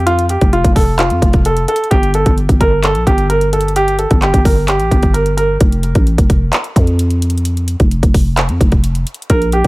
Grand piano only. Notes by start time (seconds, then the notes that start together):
0.06 F4
0.30 G4
0.53 F4
0.76 A4
0.99 F4
1.46 A4
1.68 A4
1.91 G4
2.15 A4
2.61 A#4
2.84 A4
3.07 G4
3.30 A#4
3.53 A4
3.76 G4
3.99 A4
4.22 G4
4.45 A#4
4.68 G4
5.14 A#4
5.37 A#4
9.30 A#4
9.53 G4